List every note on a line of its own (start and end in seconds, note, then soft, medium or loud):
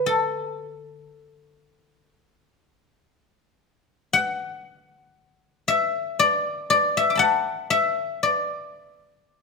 0.00 1.06 D3 soft
0.00 0.28 B3 soft
0.00 1.61 B4 medium
0.06 3.57 A4 medium
4.13 5.74 F#5 medium
5.68 6.97 E5 medium
6.19 6.70 D5 medium
6.70 8.23 D5 medium
6.97 7.70 E5 medium
7.10 8.32 D6 soft
7.15 8.79 F#5 medium
7.15 8.62 A5 soft
7.15 8.50 B5 soft
7.70 9.42 E5 medium
8.23 9.42 D5 medium